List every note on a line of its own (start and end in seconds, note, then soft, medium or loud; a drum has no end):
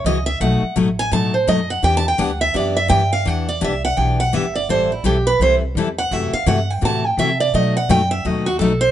0.05 0.40 C#2 medium
0.05 0.17 C#3 medium
0.05 0.17 E3 medium
0.05 0.17 A#3 loud
0.05 0.17 C#4 loud
0.05 0.17 F#4 loud
0.05 0.26 D#5 medium
0.26 0.40 E5 loud
0.40 0.61 B1 medium
0.40 0.62 B2 medium
0.40 0.62 F#3 medium
0.40 0.62 A3 medium
0.40 0.62 D#4 medium
0.40 0.63 F#4 medium
0.40 0.74 F#5 medium
0.62 muted upright bass stroke soft
0.76 1.11 A1 medium
0.76 0.87 B2 medium
0.76 0.87 F#3 medium
0.76 0.88 A3 medium
0.76 0.88 D#4 medium
0.76 0.88 F#4 loud
0.99 1.13 G#5 loud
1.11 1.47 A2 medium
1.11 1.33 B2 medium
1.11 1.33 F#3 medium
1.11 1.33 A3 medium
1.11 1.33 D#4 medium
1.11 1.33 F#4 medium
1.11 1.34 A5 loud
1.34 1.48 C5 medium
1.47 1.82 F#2 medium
1.47 1.59 B2 medium
1.47 1.59 F#3 medium
1.47 1.59 A3 medium
1.47 1.59 D#4 loud
1.47 1.59 F#4 medium
1.47 1.69 D#5 medium
1.70 1.84 F#5 medium
1.82 2.18 E2 medium
1.82 2.04 E3 medium
1.82 2.04 B3 medium
1.82 2.04 D4 medium
1.82 2.04 G4 medium
1.82 1.96 G5 loud
1.97 2.08 A5 loud
2.08 2.21 G5 medium
2.18 2.54 D2 loud
2.18 2.30 E3 loud
2.18 2.30 B3 loud
2.18 2.30 D4 loud
2.18 2.30 G4 loud
2.18 2.41 F#5 medium
2.41 2.55 E5 loud
2.54 2.89 F#2 medium
2.54 2.75 E3 medium
2.54 2.75 B3 medium
2.54 2.75 D4 medium
2.54 2.76 G4 medium
2.54 2.76 D5 medium
2.77 2.89 E5 loud
2.88 3.25 G2 loud
2.88 3.00 E3 medium
2.88 3.01 B3 medium
2.88 3.01 D4 loud
2.88 3.01 G4 medium
2.88 3.11 G5 loud
3.13 3.27 F5 loud
3.25 3.61 E2 medium
3.25 3.46 E3 medium
3.25 3.47 B3 medium
3.25 3.46 D4 medium
3.25 3.47 G4 medium
3.25 3.48 F#5 loud
3.49 3.62 D5 medium
3.61 3.97 C2 medium
3.61 3.72 E3 medium
3.61 3.72 B3 medium
3.61 3.73 D4 loud
3.61 3.73 G4 loud
3.61 3.84 E5 medium
3.85 3.98 F#5 loud
3.97 4.32 B1 medium
3.97 4.18 E3 medium
3.97 4.18 B3 medium
3.97 4.18 D4 medium
3.97 4.18 G4 medium
3.97 4.19 G5 medium
4.20 4.35 F#5 medium
4.33 4.68 G1 medium
4.33 4.44 E3 medium
4.33 4.44 B3 medium
4.33 4.44 D4 medium
4.33 4.45 G4 medium
4.33 4.55 E5 medium
4.55 4.69 D5 medium
4.69 5.03 A1 medium
4.69 4.90 E3 medium
4.69 4.90 G3 medium
4.69 4.90 C4 medium
4.69 4.90 E4 medium
4.69 4.90 A4 medium
4.69 4.90 C5 medium
4.92 5.05 E4 soft
5.04 5.39 B1 medium
5.04 5.15 E3 medium
5.04 5.15 G3 loud
5.04 5.16 C4 medium
5.04 5.16 E4 medium
5.04 5.26 G4 medium
5.04 5.16 A4 medium
5.27 5.40 B4 loud
5.40 5.74 C2 medium
5.40 5.61 E3 medium
5.40 5.61 G3 medium
5.40 5.61 C4 medium
5.40 5.62 E4 medium
5.40 5.62 A4 medium
5.40 5.55 C5 medium
5.75 6.10 E2 medium
5.75 5.87 E3 medium
5.75 5.87 G3 medium
5.75 5.88 C4 medium
5.75 5.88 E4 medium
5.75 5.88 A4 medium
5.98 6.13 F#5 medium
6.11 6.31 F#2 medium
6.11 6.32 C3 medium
6.11 6.32 E3 medium
6.11 6.33 A3 medium
6.11 6.33 E4 medium
6.11 6.32 F#4 medium
6.11 6.33 E5 medium
6.33 6.47 F5 medium
6.33 muted upright bass stroke soft
6.46 6.81 G2 medium
6.46 6.58 C3 medium
6.46 6.58 E3 medium
6.46 6.58 A3 loud
6.46 6.58 E4 medium
6.46 6.58 F#4 medium
6.46 6.70 F#5 medium
6.70 6.83 G5 loud
6.81 7.17 A2 medium
6.81 7.03 C3 medium
6.81 7.03 E3 medium
6.81 7.03 A3 medium
6.81 7.03 E4 medium
6.81 7.03 F#4 medium
6.81 7.07 A5 loud
7.07 7.19 G5 loud
7.18 7.52 C3 medium
7.18 7.29 C3 medium
7.18 7.29 E3 medium
7.18 7.29 A3 medium
7.18 7.29 E4 medium
7.18 7.29 F#4 medium
7.18 7.40 E5 medium
7.40 7.54 D5 medium
7.54 7.74 B2 medium
7.54 7.88 B2 medium
7.54 7.75 F#3 medium
7.54 7.75 A3 medium
7.54 7.75 D#4 medium
7.54 7.75 F#4 medium
7.54 7.75 D#5 medium
7.77 7.90 F#5 medium
7.89 8.24 F#2 medium
7.89 8.00 B2 medium
7.89 8.00 F#3 medium
7.89 8.00 A3 loud
7.89 8.01 D#4 medium
7.89 8.01 F#4 loud
7.89 8.11 G5 loud
8.11 8.27 E5 loud
8.25 8.59 D#2 medium
8.25 8.46 B2 medium
8.25 8.46 F#3 medium
8.25 8.46 A3 medium
8.25 8.46 D#4 medium
8.25 8.46 F#4 medium
8.25 8.47 D#5 medium
8.46 8.59 F#4 medium
8.59 8.91 B1 medium
8.59 8.72 B2 medium
8.59 8.72 F#3 medium
8.59 8.72 A3 medium
8.59 8.72 D#4 loud
8.59 8.72 F#4 medium
8.59 8.81 A4 medium
8.81 8.91 C5 loud